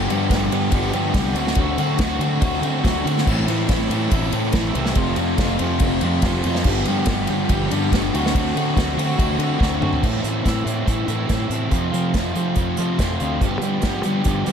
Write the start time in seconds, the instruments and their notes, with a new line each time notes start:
Already playing: overdriven electric guitar G4
0.09 overdriven electric guitar G2 D3 F3 G3 B3 G4, fingered electric bass G2, ride
0.30 fingered electric bass G1, overdriven electric guitar G2 D3 F3 G3 B3 G4, kick, snare, ride
0.52 overdriven electric guitar G2 D3 F3 G3 B3 G4, fingered electric bass G2, ride
0.72 fingered electric bass G1, overdriven electric guitar G2 D3 F3 G3 B3 G4, kick, ride
0.92 overdriven electric guitar G2 D3 F3 G3 B3 G4, fingered electric bass G2, ride
1.14 fingered electric bass C2, overdriven electric guitar G2 D3 F3 G3 B3 G4, kick, snare, ride
1.34 fingered electric bass D2, overdriven electric guitar D3 A3 C4 F#4, ride
1.47 snare
1.55 fingered electric bass D2, overdriven electric guitar D3 A3 C4 F#4, kick, ride
1.77 fingered electric bass D3, overdriven electric guitar D3 A3 C4 F#4, ride
1.99 fingered electric bass D2, overdriven electric guitar D3 A3 C4 F#4, kick, snare, ride
2.19 fingered electric bass D3, overdriven electric guitar D3 A3 C4 F#4, ride
2.41 fingered electric bass D2, overdriven electric guitar D3 A3 C4 F#4, kick, ride
2.61 fingered electric bass D3, overdriven electric guitar D3 A3 F#4, ride
2.65 overdriven electric guitar C4
2.83 fingered electric bass D2, overdriven electric guitar D3 A3 C4 F#4, kick, snare, ride
3.04 overdriven electric guitar D3 A3 C4 F#4, fingered electric bass D3, ride
3.18 snare
3.26 fingered electric bass A1, overdriven electric guitar A2 E3 A3 C4 E4, kick, crash
3.47 fingered electric bass A2, overdriven electric guitar A2 E3 A3 C4 E4, ride
3.68 fingered electric bass A1, overdriven electric guitar A2 E3 A3 C4 E4, kick, snare, ride
3.89 fingered electric bass A2, overdriven electric guitar A2 E3 A3 C4 E4, ride
4.11 fingered electric bass A1, overdriven electric guitar A2 E3 A3 C4 E4, kick, ride
4.32 overdriven electric guitar A2 E3 A3 C4 E4, fingered electric bass A2, ride
4.53 fingered electric bass A1, overdriven electric guitar A2 E3 A3 C4 E4, kick, snare, ride
4.74 fingered electric bass C2, overdriven electric guitar A2 E3 A3 C4 E4, ride
4.86 snare
4.95 fingered electric bass F1, overdriven electric guitar F2 C3 F3 A3 C4 F4, kick, ride
5.16 overdriven electric guitar F2 C3 F3 A3 C4 F4, fingered electric bass F2, ride
5.38 fingered electric bass F1, overdriven electric guitar F2 C3 F3 A3 C4 F4, kick, snare, ride
5.58 overdriven electric guitar F2 C3 F3 A3 C4 F4, fingered electric bass F2, ride
5.80 fingered electric bass F1, overdriven electric guitar F2 C3 F3 A3 C4 F4, kick, ride
6.01 fingered electric bass F2, overdriven electric guitar F2 C3 F3 A3 C4 F4, ride
6.22 fingered electric bass F1, overdriven electric guitar F2 C3 F3 A3 C4 F4, kick, snare, ride
6.44 fingered electric bass F2, overdriven electric guitar F2 C3 F3 A3 C4 F4, ride
6.55 snare
6.64 fingered electric bass G1, overdriven electric guitar G2 D3 F3 G3 B3 G4, kick, crash
6.85 fingered electric bass G2, overdriven electric guitar G2 D3 F3 G3 B3 G4, ride
7.06 fingered electric bass G1, overdriven electric guitar G2 D3 F3 G3 B3, kick, snare, ride
7.10 overdriven electric guitar G4
7.27 overdriven electric guitar G2 D3 F3 G3 B3 G4, fingered electric bass G2, ride
7.49 fingered electric bass G1, overdriven electric guitar G2 D3 F3 G3 B3 G4, kick, ride
7.70 overdriven electric guitar G2 D3 F3 G3 B3 G4, fingered electric bass G2, ride
7.92 fingered electric bass G1, overdriven electric guitar G2 D3 F3 G3 B3 G4, kick, snare, ride
8.14 fingered electric bass D2, overdriven electric guitar D3 A3 C4 F#4, ride
8.26 snare
8.34 fingered electric bass D2, overdriven electric guitar D3 A3 C4 F#4, kick, ride
8.55 fingered electric bass D3, overdriven electric guitar D3 A3 C4 F#4, ride
8.77 fingered electric bass D2, overdriven electric guitar D3 A3 C4 F#4, kick, snare, ride
8.96 fingered electric bass D3, overdriven electric guitar D3 A3 C4 F#4, ride
9.17 fingered electric bass D2, overdriven electric guitar D3 A3 C4 F#4, kick, ride
9.38 fingered electric bass D3, overdriven electric guitar D3 A3 C4 F#4, ride
9.58 fingered electric bass D2, overdriven electric guitar D3 A3 C4 F#4, kick
9.62 snare
9.81 overdriven electric guitar D3 A3 C4 F#4, fingered electric bass D3, mid tom
9.93 floor tom
10.01 overdriven electric guitar A2 E3 A3 C4 E4, fingered electric bass A2, kick, crash
10.22 fingered electric bass A2, overdriven electric guitar A3 C4 E4, closed hi-hat
10.45 fingered electric bass A2, overdriven electric guitar E3 A3 C4 E4, kick, snare, closed hi-hat
10.65 fingered electric bass A2, overdriven electric guitar A2 E3 A3 C4 E4, closed hi-hat
10.86 fingered electric bass A2, overdriven electric guitar E3 A3 C4 E4, kick, closed hi-hat
11.08 fingered electric bass A2, overdriven electric guitar A2 E3 A3 C4 E4, closed hi-hat
11.29 fingered electric bass A2, overdriven electric guitar E3 A3 C4 E4, kick, snare, closed hi-hat
11.48 fingered electric bass A2, overdriven electric guitar A3 C4 E4, closed hi-hat
11.69 overdriven electric guitar F2 C3 F3 A3 C4 F4, fingered electric bass F2, kick, closed hi-hat
11.92 fingered electric bass F3, overdriven electric guitar A3 C4 F4, closed hi-hat
11.96 overdriven electric guitar F3
12.13 fingered electric bass F2, overdriven electric guitar F3 A3 C4 F4, kick, snare, closed hi-hat
12.34 overdriven electric guitar F2 C3 F3 A3 C4 F4, fingered electric bass F3, closed hi-hat
12.54 fingered electric bass F2, overdriven electric guitar F3 A3 C4 F4, kick, closed hi-hat
12.77 overdriven electric guitar F2 C3 F3 A3 C4 F4, fingered electric bass F3, closed hi-hat
12.98 fingered electric bass F2, overdriven electric guitar F3 A3 C4 F4, kick, snare, closed hi-hat
13.20 fingered electric bass D2, overdriven electric guitar F3 A3 C4 F4, closed hi-hat
13.41 fingered electric bass G2, overdriven electric guitar G2 D3 F3 G3, kick, closed hi-hat
13.45 overdriven electric guitar B3 G4
13.61 fingered electric bass G3, overdriven electric guitar G3 B3 G4, closed hi-hat
13.65 overdriven electric guitar F3
13.82 fingered electric bass G2, overdriven electric guitar F3 G3, kick, snare, closed hi-hat
13.87 overdriven electric guitar B3 G4
14.03 overdriven electric guitar G2 D3 F3 G3 B3 G4, fingered electric bass G3, closed hi-hat
14.24 fingered electric bass G2, overdriven electric guitar F3 G3 B3 G4, kick, closed hi-hat
14.46 overdriven electric guitar D3 F3 G3 B3 G4, fingered electric bass G3, closed hi-hat